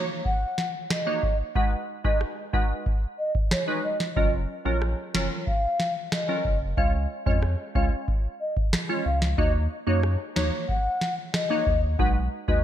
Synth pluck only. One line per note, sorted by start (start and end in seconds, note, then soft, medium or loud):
0.00 0.22 A#3 medium
0.00 0.23 D#4 medium
0.00 0.23 F#4 medium
0.00 0.23 C#5 medium
1.06 1.22 A#3 medium
1.06 1.22 D#4 medium
1.06 1.22 F#4 medium
1.06 1.22 C#5 medium
1.55 1.71 G#3 medium
1.55 1.71 D#4 medium
1.55 1.71 F#4 medium
1.55 1.71 B4 medium
2.04 2.49 G#3 medium
2.04 2.50 D#4 medium
2.04 2.50 F#4 medium
2.04 2.50 B4 medium
2.53 2.83 G#3 medium
2.53 2.83 D#4 medium
2.53 2.84 F#4 medium
2.53 2.84 B4 medium
3.67 3.83 G#3 medium
3.67 3.83 D#4 medium
3.67 3.83 F#4 medium
3.67 3.83 B4 medium
4.16 4.32 F#3 medium
4.16 4.32 C#4 medium
4.16 4.32 F4 medium
4.16 4.32 A#4 medium
4.65 5.10 F#3 medium
4.65 5.10 C#4 medium
4.65 5.11 F4 medium
4.65 5.11 A#4 medium
5.14 5.44 F#3 medium
5.14 5.44 C#4 medium
5.14 5.45 F4 medium
5.14 5.45 A#4 medium
6.28 6.44 F#3 medium
6.28 6.44 C#4 medium
6.28 6.44 F4 medium
6.28 6.44 A#4 medium
6.77 6.93 G#3 medium
6.77 6.93 C#4 medium
6.77 6.93 F4 medium
6.77 6.93 C#5 loud
7.26 7.71 G#3 medium
7.26 7.71 C#4 medium
7.26 7.71 F4 medium
7.26 7.72 C#5 medium
7.75 8.05 G#3 medium
7.75 8.05 C#4 medium
7.75 8.05 F4 medium
7.75 8.05 C#5 medium
8.89 9.04 G#3 medium
8.89 9.05 C#4 medium
8.89 9.05 F4 medium
8.89 9.05 C#5 medium
9.38 9.53 A#3 medium
9.38 9.53 D#4 medium
9.38 9.54 F#4 medium
9.38 9.54 C#5 loud
9.87 10.32 A#3 medium
9.87 10.32 D#4 medium
9.87 10.32 F#4 medium
9.87 10.32 C#5 medium
10.36 10.66 A#3 medium
10.36 10.66 D#4 medium
10.36 10.66 F#4 medium
10.36 10.66 C#5 medium
11.50 11.65 A#3 medium
11.50 11.66 D#4 medium
11.50 11.66 F#4 medium
11.50 11.66 C#5 medium
11.99 12.14 G#3 medium
11.99 12.14 D#4 medium
11.99 12.15 F#4 medium
11.99 12.15 B4 loud
12.48 12.64 G#3 medium
12.48 12.64 D#4 medium
12.48 12.64 F#4 medium
12.48 12.64 B4 medium